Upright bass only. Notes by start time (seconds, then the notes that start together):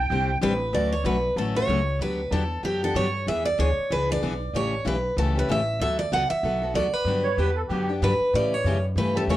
0.10 C2
0.41 A1
0.73 D2
1.04 B1
1.36 A1
1.67 C#2
1.99 D2
2.31 E2
2.63 F#2
2.95 G2
3.27 E2
3.58 D2
3.90 C#2
4.22 B1
4.53 A1
4.85 B1
5.17 C#2
5.48 A1
5.80 D2
6.12 C#2
6.31 muted upright bass stroke
6.43 B1
6.74 D2
6.93 muted upright bass stroke
7.05 G2
7.37 E2
7.69 F#2
8.02 G2
8.20 muted upright bass stroke
8.33 A2
8.64 F#2
8.96 G2
9.27 E2